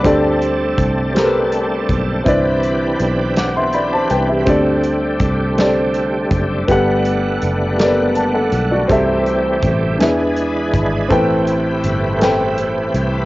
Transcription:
<<
  \new Staff \with { instrumentName = "Upright piano" } { \time 6/8 \key d \mixolydian \tempo 4. = 54 << { b''16 r2 r8. | r4. <fis'' d'''>16 <e'' c'''>16 <d'' b''>16 <c'' a''>16 <b' g''>16 <g' e''>16~ | <g' e''>16 r2 r8. | r2 a''16 <a' fis''>8 <fis' d''>16~ |
<fis' d''>16 r2 r8. | r2. | } \\ { <c' g' a' d''>4 r8 <c' g' a' bes' b'>4 r8 | <c' e' b' d''>4 r2 | <c' g' a' d''>4 r8 <c' g' a' d''>4 r8 | <b g' a' fis''>4 r8 <bes b g' a' d''>4 r8 |
<c' g' a' e''>4 r8 <d' gis' b' e''>4 r8 | <c' a' b' g''>4 r8 <c' a' b' g''>4 r8 | } >> }
  \new Staff \with { instrumentName = "Upright piano" } { \clef bass \time 6/8 \key d \mixolydian d4. r4. | d4. r4. | d4. r4. | g4. r4. |
c4. e4. | a,4. r4. | }
  \new Staff \with { instrumentName = "Tonewheel organ" } { \time 6/8 \key d \mixolydian << { a'2. | g'2.~ | g'2. | <b fis''>2. |
<c' g'>4. <d' gis'>4. | <c' g'>2. | } \\ { <c' d'>2.~ | <c' d'>2. | a2.~ | a2.~ |
a4. b'4.~ | b'2. | } >> }
  \new Staff \with { instrumentName = "Tonewheel organ" } { \clef bass \time 6/8 \key d \mixolydian << { a2. | b'2. | g2. | g2.~ |
g4. gis4. | a2. | } \\ { g2. | e2. | d2.~ | d2. |
e2.~ | e2. | } >> }
  \new Staff \with { instrumentName = "Fingered electric bass" } { \clef bass \time 6/8 \key d \mixolydian d,4 c,4. b,,8 | c,4 b,,4. c,8 | d,4 c,4. fis,,8 | g,,4 fis,,4. b,,8 |
c,4 a,,8 e,4 gis,,8 | a,,4 g,,4. c,8 | }
  \new DrumStaff \with { instrumentName = "Drums" } \drummode { \time 6/8 <hh bd>8 hh8 <hh bd>8 <hh sn>8 hh8 <hh bd>8 | <hh bd>8 hh8 hh8 <hh sn>8 hh8 hh8 | <hh bd>8 hh8 <hh bd>8 <hh sn>8 hh8 <hh bd>8 | <hh bd>8 hh8 hh8 <hh sn>8 hh8 hh8 |
<hh bd>8 hh8 <hh bd>8 <hh sn>8 hh8 <hh bd>8 | <hh bd>8 hh8 hh8 <hh sn>8 hh8 hh8 | }
>>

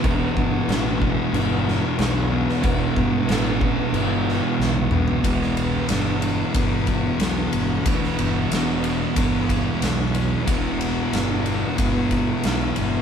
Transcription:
<<
  \new Staff \with { instrumentName = "Tonewheel organ" } { \time 4/4 \key e \minor \tempo 4 = 92 <e b fis'>1~ | <e b fis'>1 | <e b fis'>1~ | <e b fis'>1~ |
<e b fis'>1 | }
  \new Staff \with { instrumentName = "Distorted electric guitar" } { \clef bass \time 4/4 \key e \minor <e, b, e>2.~ <e, b, e>8 <e, b, e>8 | <e, b, e>2.~ <e, b, e>8 <e, b, e>8 | <e, b, e>2 <e, b, e>2 | <e, b, e>2 <e, b, e>2 |
<e, b, e>2 <e, b, e>2 | }
  \new Staff \with { instrumentName = "Distorted electric guitar" } { \clef bass \time 4/4 \key e \minor <e, b, e>1 | <e, b, e>1 | <e, b, e>1 | <e, b, e>1 |
<e, b, e>1 | }
  \new Staff \with { instrumentName = "Fingered electric bass" } { \clef bass \time 4/4 \key e \minor e,,8 g,,8 a,,4 g,,4 b,,4 | e,,8 g,,8 a,,4 g,,4 b,,4 | e,,4 g,,4 g,,4 b,,8 g,,8 | d,8 g,,8 e,,4 g,,4 b,,4 |
e,,4 g,,4 g,,4 b,,8 g,,8 | }
  \new DrumStaff \with { instrumentName = "Drums" } \drummode { \time 4/4 <cymc bd>8 bd8 <cymc sn>8 bd8 cymc8 sn8 <cymc sn>8. sn16 | <cymc bd>8 bd8 <cymc sn>8 bd8 cymc8 sn8 sn16 tommh16 toml16 tomfh16 | <bd cymr>16 sn16 cymr8 <cymr sn>8 cymr8 <bd cymr>8 <bd cymr>8 <cymr sn>8 cymr8 | <bd cymr>16 sn16 cymr8 <cymr sn>8 cymr8 <bd cymr>8 <bd cymr>8 <cymr sn>8 cymr8 |
<bd cymr>8 cymr8 <cymr sn>8 cymr8 <bd cymr>8 <bd cymr>8 <cymr sn>8 cymr8 | }
>>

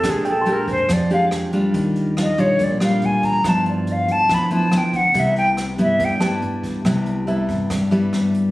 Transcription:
<<
  \new Staff \with { instrumentName = "Grand piano" } { \time 4/4 \key c \major \tempo 4 = 141 r8 g''16 c'''2. r16 | r1 | r1 | r2 r8 a''4.~ |
a''4 e''2. | }
  \new Staff \with { instrumentName = "Flute" } { \time 4/4 \key c \major aes'8 a'8 bes'8 c''8 d''8 f''8 r4 | r4 ees''8 des''8 d''8 f''8 aes''8 bes''8 | a''8 d''8 f''8 a''8 b''8 a''8 g''8 fis''8 | e''8 g''8 r8 e''8 g''8 r4. |
r1 | }
  \new Staff \with { instrumentName = "Nylon-string guitar" } { \time 4/4 \key c \major << { <aes d' g'>8 r8 <aes d' g'>4 r8 <aes d' g'>4 <g d' f'>8~ | <g d' f'>4 <g d' f'>8 <g d' f'>4 <g d' f'>4. | <f b e'>2 <f b e'>8 <f b e'>8 <f b e'>8 r8 | <g b e'>4. <g b e'>4 <g b e'>4. |
<g b e'>4 <g b e'>4 r8 <g b e'>4. | } \\ { bes,2 f2 | ees2 bes,2 | g,2 d2 | c2 g,2 |
c2 g,2 | } >> }
  \new Staff \with { instrumentName = "Upright bass" } { \clef bass \time 4/4 \key c \major bes,,4. f,8 f,4 f,4 | ees,4. bes,,8 bes,,4 d,4 | g,4. d,8 d,4 d,4 | c,4. g,8 g,4 g,4 |
c,4. g,8 g,4 g,4 | }
  \new DrumStaff \with { instrumentName = "Drums" } \drummode { \time 4/4 <hh bd ss>8 hh8 hh8 <hh bd>8 <hh bd ss>8 hh8 <hh ss>8 hh8 | <hh bd>8 hh8 <hh ss>8 hh8 <hh bd>8 <hh ss>8 hh8 <hh bd>8 | <hh bd ss>8 hh8 hh8 hh8 <hh bd ss>8 hh8 <hh ss>8 <hh bd>8 | <hh bd>8 hh8 <hh ss>8 hh8 <hh bd>8 <hh ss>8 hh8 <hh bd>8 |
<hh bd ss>8 hh8 hh8 <hh bd>8 <hh bd ss>8 hh8 <hh ss>8 hh8 | }
>>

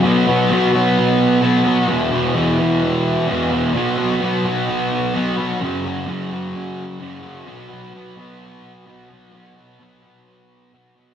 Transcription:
\new Staff \with { instrumentName = "Distorted electric guitar" } { \clef bass \time 4/4 \key fis \mixolydian \tempo 4 = 129 <b, fis b>8 <fis b>8 <b, fis b>8 <fis b>4. <b, fis b>8 <fis b>8 | <e, b, e>8 <b, e>8 <e, b, e>8 <b, e>4. <e, b, e>8 <b, e>8 | <b, fis b>8 <fis b>8 <b, fis b>8 <fis b>4. <b, fis b>8 <fis b>8 | <fis, cis fis>8 <cis fis>8 <fis, cis fis>8 <cis fis>4. <fis, cis fis>8 <cis fis>8 |
<b, fis b>8 <fis b>8 <b, fis b>8 <fis b>4. <b, fis b>8 <fis b>8 | <b, fis b>8 <fis b>8 <b, fis b>8 <fis b>4. <b, fis b>8 <fis b>8 | }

